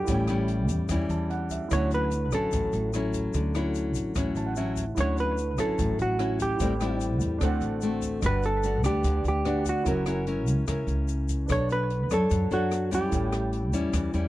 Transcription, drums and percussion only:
0.07 kick soft
0.07 closed hi-hat medium
0.07 shaker medium
0.27 cross-stick soft
0.27 closed hi-hat soft
0.27 shaker soft
0.48 closed hi-hat soft
0.68 kick soft
0.68 closed hi-hat soft
0.68 shaker medium
0.89 kick medium
0.89 cross-stick medium
0.89 closed hi-hat medium
0.89 shaker medium
1.10 closed hi-hat soft
1.10 shaker soft
1.30 closed hi-hat soft
1.50 kick soft
1.50 closed hi-hat soft
1.50 shaker medium
1.71 kick soft
1.71 cross-stick medium
1.71 closed hi-hat soft
1.71 shaker medium
1.91 closed hi-hat soft
1.91 shaker soft
2.11 closed hi-hat soft
2.11 shaker soft
2.32 kick soft
2.32 cross-stick medium
2.32 closed hi-hat soft
2.32 shaker medium
2.52 kick medium
2.52 closed hi-hat soft
2.52 shaker medium
2.73 closed hi-hat soft
2.73 shaker soft
2.93 cross-stick medium
2.93 closed hi-hat soft
2.93 shaker soft
3.13 kick soft
3.13 closed hi-hat soft
3.13 shaker medium
3.34 kick medium
3.34 closed hi-hat soft
3.34 shaker medium
3.55 cross-stick medium
3.55 closed hi-hat soft
3.55 shaker soft
3.75 closed hi-hat soft
3.75 shaker medium
3.95 kick soft
3.95 closed hi-hat soft
3.95 shaker medium
4.15 kick medium
4.15 cross-stick medium
4.15 closed hi-hat medium
4.15 shaker medium
4.35 closed hi-hat soft
4.35 shaker soft
4.56 closed hi-hat soft
4.56 shaker soft
4.77 kick soft
4.77 closed hi-hat soft
4.77 shaker medium
4.97 kick medium
4.97 cross-stick soft
4.97 closed hi-hat soft
4.97 shaker medium
5.17 closed hi-hat soft
5.17 shaker soft
5.38 closed hi-hat soft
5.38 shaker soft
5.58 kick soft
5.58 cross-stick medium
5.58 closed hi-hat soft
5.58 shaker medium
5.79 kick medium
5.79 closed hi-hat medium
5.79 shaker medium
5.99 closed hi-hat soft
5.99 shaker soft
6.19 cross-stick soft
6.19 closed hi-hat soft
6.40 kick soft
6.40 closed hi-hat soft
6.40 shaker medium
6.60 kick medium
6.60 closed hi-hat medium
6.60 shaker medium
6.80 cross-stick medium
6.80 closed hi-hat soft
6.80 shaker soft
7.01 closed hi-hat soft
7.01 shaker soft
7.20 kick soft
7.20 closed hi-hat soft
7.20 shaker medium
7.41 kick medium
7.41 cross-stick medium
7.41 closed hi-hat medium
7.41 shaker medium
7.61 closed hi-hat soft
7.61 shaker soft
7.81 closed hi-hat soft
7.81 shaker soft
8.02 kick soft
8.02 closed hi-hat soft
8.02 shaker medium
8.22 kick soft
8.22 cross-stick medium
8.22 closed hi-hat medium
8.22 shaker medium
8.43 closed hi-hat soft
8.43 shaker soft
8.63 closed hi-hat soft
8.63 shaker soft
8.84 kick soft
8.84 cross-stick medium
8.84 closed hi-hat soft
8.84 shaker medium
9.04 kick medium
9.04 closed hi-hat medium
9.04 shaker medium
9.25 closed hi-hat soft
9.25 shaker soft
9.45 cross-stick soft
9.45 closed hi-hat soft
9.66 kick soft
9.66 closed hi-hat soft
9.66 shaker medium
9.86 kick soft
9.86 closed hi-hat soft
9.86 shaker medium
10.06 cross-stick medium
10.06 closed hi-hat soft
10.06 shaker soft
10.27 closed hi-hat soft
10.47 kick soft
10.47 closed hi-hat soft
10.47 shaker medium
10.67 kick medium
10.67 cross-stick medium
10.67 closed hi-hat medium
10.67 shaker medium
10.88 closed hi-hat soft
10.88 shaker soft
11.08 closed hi-hat soft
11.08 shaker medium
11.29 kick soft
11.29 closed hi-hat soft
11.29 shaker medium
11.49 kick soft
11.49 cross-stick medium
11.49 closed hi-hat medium
11.49 shaker medium
11.69 closed hi-hat soft
11.69 shaker soft
11.90 closed hi-hat soft
12.10 kick soft
12.10 cross-stick medium
12.10 closed hi-hat soft
12.10 shaker medium
12.31 kick medium
12.31 closed hi-hat soft
12.31 shaker medium
12.51 closed hi-hat soft
12.51 shaker soft
12.71 cross-stick soft
12.71 closed hi-hat soft
12.71 shaker soft
12.92 kick soft
12.92 closed hi-hat soft
12.92 shaker medium
13.12 kick medium
13.12 closed hi-hat medium
13.12 shaker medium
13.32 cross-stick medium
13.32 closed hi-hat soft
13.32 shaker soft
13.53 closed hi-hat soft
13.73 kick soft
13.73 closed hi-hat soft
13.73 shaker medium
13.93 kick medium
13.93 cross-stick medium
13.93 closed hi-hat medium
13.93 shaker medium
14.14 closed hi-hat soft
14.14 shaker soft

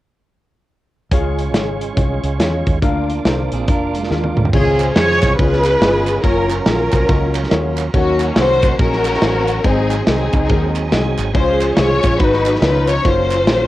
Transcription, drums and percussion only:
1.11 kick loud
1.11 closed hi-hat medium
1.39 closed hi-hat medium
1.54 snare loud
1.54 closed hi-hat medium
1.81 closed hi-hat medium
1.97 kick loud
1.97 closed hi-hat medium
2.24 closed hi-hat medium
2.40 snare medium
2.40 closed hi-hat medium
2.67 kick medium
2.67 closed hi-hat medium
2.82 kick loud
2.82 closed hi-hat medium
3.10 closed hi-hat medium
3.25 snare loud
3.25 closed hi-hat medium
3.52 closed hi-hat medium
3.68 kick loud
3.68 closed hi-hat medium
3.95 closed hi-hat medium
4.03 snare soft
4.11 snare soft
4.24 high tom medium
4.37 mid tom medium
4.45 floor tom medium
4.53 kick loud
4.53 crash medium
4.80 clap loud
4.80 ride bell medium
4.96 snare loud
4.96 ride bell medium
5.23 kick medium
5.23 clap loud
5.23 ride bell medium
5.39 kick loud
5.39 ride bell medium
5.52 snare soft
5.64 clap medium
5.64 ride bell medium
5.82 snare loud
5.82 ride bell medium
6.07 clap medium
6.07 ride bell medium
6.24 kick loud
6.24 ride bell medium
6.50 clap loud
6.50 ride bell medium
6.66 snare loud
6.66 ride bell medium
6.92 kick loud
6.92 clap loud
6.92 ride bell medium
7.09 kick loud
7.09 ride bell medium
7.35 clap medium
7.35 ride bell medium
7.43 snare soft
7.51 snare loud
7.51 ride bell medium
7.78 clap loud
7.78 ride bell medium
7.94 kick loud
7.94 ride bell medium
8.20 clap loud
8.20 ride bell medium
8.36 snare loud
8.36 ride bell medium
8.63 kick loud
8.63 clap loud
8.63 ride bell medium
8.79 kick loud
8.79 ride bell medium
8.92 snare soft
9.05 clap loud
9.05 ride bell medium
9.14 snare soft
9.22 snare loud
9.22 ride bell medium
9.48 clap medium
9.48 ride bell medium
9.64 kick loud
9.64 ride bell medium
9.91 clap loud
9.91 ride bell medium
10.07 snare loud
10.07 ride bell medium
10.33 kick loud
10.33 clap loud
10.33 ride bell medium
10.49 kick loud
10.49 ride bell medium
10.76 clap medium
10.76 ride bell medium
10.92 snare medium
10.92 ride bell medium
11.18 clap loud
11.18 ride bell medium
11.35 kick loud
11.35 ride bell medium
11.61 clap loud
11.61 ride bell medium
11.76 snare loud
11.76 ride bell medium
12.04 kick loud
12.04 clap loud
12.04 ride bell medium
12.19 kick loud
12.19 ride bell medium
12.33 snare soft
12.46 clap loud
12.46 ride bell medium
12.55 snare soft
12.62 snare loud
12.62 ride bell medium
12.88 clap loud
12.88 ride bell medium
13.05 kick loud
13.05 ride bell medium
13.31 clap loud
13.31 ride bell medium
13.47 snare loud
13.47 ride bell medium

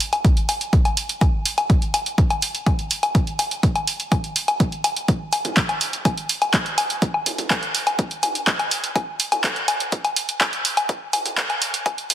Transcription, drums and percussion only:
0.00 open hi-hat medium
0.13 closed hi-hat soft
0.13 low woodblock soft
0.25 kick loud
0.25 closed hi-hat soft
0.37 closed hi-hat soft
0.49 open hi-hat loud
0.49 low woodblock medium
0.61 closed hi-hat soft
0.73 kick loud
0.73 closed hi-hat soft
0.85 closed hi-hat soft
0.85 low woodblock medium
0.97 open hi-hat loud
1.09 closed hi-hat soft
1.21 kick loud
1.21 closed hi-hat soft
1.21 low woodblock medium
1.46 open hi-hat loud
1.58 closed hi-hat soft
1.58 low woodblock medium
1.70 kick loud
1.70 closed hi-hat soft
1.82 closed hi-hat soft
1.94 open hi-hat medium
1.94 low woodblock medium
2.06 closed hi-hat soft
2.18 kick loud
2.18 closed hi-hat soft
2.30 closed hi-hat soft
2.30 low woodblock medium
2.42 open hi-hat loud
2.55 closed hi-hat soft
2.66 kick loud
2.66 closed hi-hat soft
2.66 low woodblock medium
2.79 closed hi-hat soft
2.91 open hi-hat medium
3.03 closed hi-hat soft
3.03 low woodblock medium
3.15 kick loud
3.15 closed hi-hat soft
3.27 closed hi-hat soft
3.39 open hi-hat loud
3.39 low woodblock medium
3.51 closed hi-hat soft
3.63 kick loud
3.63 closed hi-hat soft
3.76 closed hi-hat soft
3.76 low woodblock medium
3.87 open hi-hat medium
4.00 closed hi-hat soft
4.12 kick loud
4.12 closed hi-hat soft
4.12 low woodblock medium
4.24 closed hi-hat soft
4.36 open hi-hat loud
4.48 closed hi-hat soft
4.48 low woodblock medium
4.60 kick loud
4.60 closed hi-hat soft
4.72 closed hi-hat soft
4.84 open hi-hat medium
4.84 low woodblock medium
4.96 closed hi-hat soft
5.08 kick loud
5.08 closed hi-hat soft
5.33 open hi-hat loud
5.33 low woodblock medium
5.45 closed hi-hat soft
5.45 mid tom medium
5.57 kick loud
5.57 clap loud
5.57 closed hi-hat soft
5.69 closed hi-hat soft
5.69 low woodblock medium
5.81 open hi-hat medium
5.93 closed hi-hat soft
6.05 kick loud
6.05 closed hi-hat soft
6.05 low woodblock medium
6.18 closed hi-hat soft
6.29 open hi-hat loud
6.42 closed hi-hat soft
6.42 low woodblock medium
6.54 kick loud
6.54 clap loud
6.54 closed hi-hat soft
6.66 closed hi-hat soft
6.78 open hi-hat medium
6.78 low woodblock medium
6.90 closed hi-hat soft
7.02 kick loud
7.02 closed hi-hat soft
7.14 low woodblock medium
7.26 mid tom medium
7.26 open hi-hat loud
7.38 closed hi-hat soft
7.38 mid tom medium
7.50 kick loud
7.50 clap loud
7.50 closed hi-hat soft
7.50 low woodblock medium
7.63 closed hi-hat soft
7.75 open hi-hat medium
7.87 closed hi-hat soft
7.87 low woodblock medium
7.99 kick loud
7.99 closed hi-hat soft
8.11 closed hi-hat soft
8.23 mid tom medium
8.23 open hi-hat loud
8.23 low woodblock medium
8.35 closed hi-hat soft
8.47 kick loud
8.47 clap loud
8.47 closed hi-hat soft
8.59 closed hi-hat soft
8.59 low woodblock medium
8.71 open hi-hat medium
8.84 closed hi-hat soft
8.96 kick loud
8.96 closed hi-hat soft
8.96 low woodblock medium
9.20 open hi-hat loud
9.32 closed hi-hat soft
9.32 mid tom medium
9.32 low woodblock medium
9.44 kick loud
9.44 clap loud
9.44 closed hi-hat soft
9.56 closed hi-hat soft
9.68 open hi-hat medium
9.68 low woodblock soft
9.80 closed hi-hat soft
9.92 kick loud
9.92 closed hi-hat soft
10.05 closed hi-hat soft
10.05 low woodblock medium
10.16 open hi-hat loud
10.29 closed hi-hat soft
10.41 kick loud
10.41 clap loud
10.41 closed hi-hat soft
10.41 low woodblock medium
10.53 closed hi-hat soft
10.65 open hi-hat medium
10.77 closed hi-hat soft
10.77 low woodblock medium
10.89 kick loud
10.89 closed hi-hat soft
11.13 mid tom medium
11.13 open hi-hat loud
11.13 low woodblock medium
11.26 closed hi-hat soft
11.26 mid tom medium
11.37 kick loud
11.37 clap loud
11.37 closed hi-hat soft
11.50 closed hi-hat soft
11.50 low woodblock medium
11.62 open hi-hat medium
11.74 closed hi-hat soft
11.86 kick loud
11.86 closed hi-hat soft
11.86 low woodblock soft
11.98 closed hi-hat soft
12.10 mid tom medium
12.10 open hi-hat loud

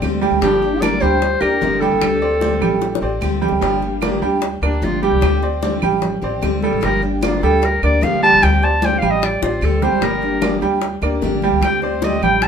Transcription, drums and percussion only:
0.02 high bongo soft
0.02 low bongo medium
0.02 high conga medium
0.02 claves medium
0.23 high conga medium
0.42 high bongo medium
0.42 high conga soft
0.62 high bongo soft
0.62 high conga soft
0.82 high bongo medium
0.82 high conga loud
0.82 claves medium
1.02 high bongo soft
1.02 high conga soft
1.22 high bongo medium
1.22 high conga soft
1.42 high bongo soft
1.42 high conga soft
1.42 claves medium
1.62 high bongo soft
1.62 low bongo medium
1.62 high conga medium
1.82 high conga medium
2.02 high bongo medium
2.02 high conga soft
2.02 claves medium
2.22 high bongo soft
2.22 high conga soft
2.41 high bongo medium
2.41 high conga medium
2.62 high bongo soft
2.62 high conga soft
2.62 low conga medium
2.62 claves medium
2.82 high bongo medium
2.82 high conga soft
2.95 high bongo medium
3.02 high conga soft
3.22 high conga medium
3.22 claves medium
3.42 low conga medium
3.49 low bongo medium
3.62 high bongo medium
3.62 high conga soft
3.82 high bongo soft
3.82 high conga soft
4.02 high bongo medium
4.02 high conga loud
4.02 claves medium
4.22 high bongo soft
4.22 high conga soft
4.42 high bongo medium
4.42 high conga soft
4.63 high bongo soft
4.63 high conga soft
4.63 claves medium
4.83 high bongo soft
4.83 low bongo medium
4.83 high conga medium
5.03 high conga medium
5.22 high bongo medium
5.22 high conga soft
5.22 claves medium
5.43 high bongo soft
5.43 high conga soft
5.63 high bongo medium
5.63 high conga medium
5.82 high bongo soft
5.82 high conga soft
5.82 low conga medium
5.82 claves medium
6.02 high bongo medium
6.02 high conga soft
6.02 low conga medium
6.22 high bongo soft
6.22 high conga soft
6.43 high bongo soft
6.43 low bongo medium
6.43 high conga medium
6.43 claves medium
6.63 high conga medium
6.83 high bongo medium
6.83 high conga soft
7.02 high bongo soft
7.02 high conga soft
7.23 high bongo medium
7.23 high conga loud
7.23 claves medium
7.43 high bongo soft
7.43 high conga soft
7.63 high bongo medium
7.63 high conga soft
7.83 high bongo soft
7.83 high conga soft
7.83 claves medium
8.02 high bongo soft
8.02 low bongo medium
8.02 high conga medium
8.43 high bongo medium
8.43 high conga soft
8.43 claves medium
8.62 high bongo soft
8.62 high conga soft
8.82 high bongo medium
8.82 high conga medium
9.02 high bongo soft
9.02 high conga soft
9.02 low conga medium
9.02 claves medium
9.23 high bongo medium
9.23 high conga soft
9.43 high bongo medium
9.43 high conga soft
9.62 high conga medium
9.62 claves medium
9.82 low bongo medium
9.82 high conga medium
10.02 high bongo medium
10.02 high conga soft
10.23 high bongo soft
10.23 high conga soft
10.42 high bongo medium
10.42 high conga loud
10.42 claves medium
10.62 high bongo soft
10.62 high conga soft
10.82 high bongo medium
10.82 high conga soft
11.02 high bongo soft
11.02 high conga soft
11.02 claves medium
11.22 high bongo soft
11.22 low bongo medium
11.22 high conga medium
11.42 high conga medium
11.63 high bongo medium
11.63 high conga soft
11.63 claves medium
11.82 high bongo soft
11.82 high conga soft
12.02 high bongo medium
12.02 high conga loud
12.22 high bongo soft
12.22 high conga soft
12.22 low conga medium
12.22 claves medium
12.42 high bongo medium
12.42 high conga soft

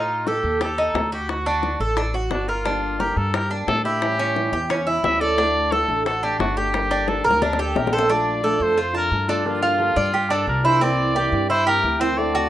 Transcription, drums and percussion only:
0.27 high bongo medium
0.61 high bongo medium
0.95 high bongo medium
0.95 low bongo medium
1.29 high bongo medium
1.46 high bongo soft
1.63 high bongo soft
1.97 high bongo medium
2.14 high bongo soft
2.31 high bongo medium
2.31 low bongo medium
2.48 high bongo soft
2.66 high bongo medium
3.00 high bongo soft
3.34 high bongo medium
3.68 high bongo medium
3.68 low bongo medium
4.02 high bongo medium
4.19 high bongo soft
4.36 high bongo soft
4.70 high bongo medium
4.87 high bongo soft
5.04 high bongo medium
5.04 low bongo medium
5.21 high bongo soft
5.38 high bongo medium
5.72 high bongo soft
6.06 high bongo medium
6.40 high bongo medium
6.40 low bongo medium
6.74 high bongo medium
6.91 high bongo soft
7.08 high bongo medium
7.31 high bongo medium
7.42 low bongo medium
7.53 low bongo medium
7.76 low bongo medium
7.87 low bongo medium
7.98 low bongo medium

